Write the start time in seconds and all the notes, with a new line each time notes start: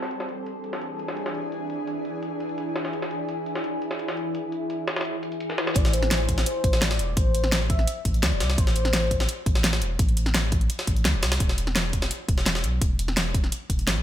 0.02 snare
0.11 E3 D4 G#4, closed hi-hat
0.20 snare
0.29 closed hi-hat
0.46 closed hi-hat
0.64 closed hi-hat
0.73 snare
0.82 closed hi-hat
0.99 closed hi-hat
1.08 snare
1.17 closed hi-hat
1.26 snare
1.34 closed hi-hat
1.52 closed hi-hat
1.70 closed hi-hat
1.87 closed hi-hat
2.05 closed hi-hat
2.23 closed hi-hat
2.40 closed hi-hat
2.49 closed hi-hat
2.58 closed hi-hat
2.76 snare, closed hi-hat
2.85 snare
2.93 E4, closed hi-hat
3.02 snare
3.11 closed hi-hat
3.29 closed hi-hat
3.46 closed hi-hat
3.55 snare
3.64 closed hi-hat
3.82 closed hi-hat
3.91 snare
3.99 closed hi-hat
4.08 snare
4.17 closed hi-hat
4.35 closed hi-hat
4.52 closed hi-hat
4.70 closed hi-hat
4.88 snare, closed hi-hat
4.96 snare, closed hi-hat
5.01 snare, closed hi-hat
5.05 closed hi-hat
5.23 closed hi-hat
5.32 closed hi-hat
5.40 closed hi-hat
5.50 snare
5.58 B4, snare, closed hi-hat
5.67 snare, closed hi-hat
5.76 A1 D5, kick, closed hi-hat
5.85 snare
5.93 C5, closed hi-hat
6.03 snare
6.11 snare, closed hi-hat
6.29 kick, closed hi-hat
6.38 snare
6.46 C5, closed hi-hat
6.64 A1, kick, closed hi-hat
6.73 snare
6.82 D5, snare, closed hi-hat
6.91 snare
6.99 E1, closed hi-hat
7.17 A1 C5, kick, closed hi-hat
7.35 closed hi-hat
7.44 snare
7.52 snare, closed hi-hat
7.70 E5, kick, closed hi-hat
7.79 snare
7.88 closed hi-hat
8.05 A1, kick, closed hi-hat
8.14 closed hi-hat
8.23 D2 D5, snare, closed hi-hat
8.32 E1
8.40 C2, snare, closed hi-hat
8.50 snare
8.58 A1 C5, kick, closed hi-hat
8.67 snare
8.76 C5, closed hi-hat
8.85 snare
8.93 snare, closed hi-hat
9.11 kick, closed hi-hat
9.20 snare
9.29 closed hi-hat
9.46 A1, kick, closed hi-hat
9.55 snare
9.64 snare, closed hi-hat
9.73 snare
9.82 E1, closed hi-hat
9.99 A1, kick, closed hi-hat
10.09 closed hi-hat
10.17 closed hi-hat
10.26 snare
10.34 snare, closed hi-hat
10.52 kick, closed hi-hat
10.61 closed hi-hat
10.70 closed hi-hat
10.79 snare
10.87 A1, kick, closed hi-hat
10.96 closed hi-hat
11.05 D2, snare, closed hi-hat
11.14 E1
11.23 C2, snare, closed hi-hat
11.32 snare, closed hi-hat
11.40 E1, kick, closed hi-hat
11.49 snare
11.58 closed hi-hat
11.67 snare
11.76 snare, closed hi-hat
11.93 kick, closed hi-hat
12.02 snare
12.11 closed hi-hat
12.28 E1, kick, closed hi-hat
12.38 snare
12.46 snare, closed hi-hat
12.55 snare
12.64 B1, closed hi-hat
12.81 E1, kick, closed hi-hat
12.99 closed hi-hat
13.08 snare
13.17 snare, closed hi-hat
13.34 kick, closed hi-hat
13.44 snare
13.52 closed hi-hat
13.70 E1, kick, closed hi-hat
13.79 closed hi-hat
13.87 G#1, snare, closed hi-hat
13.97 B1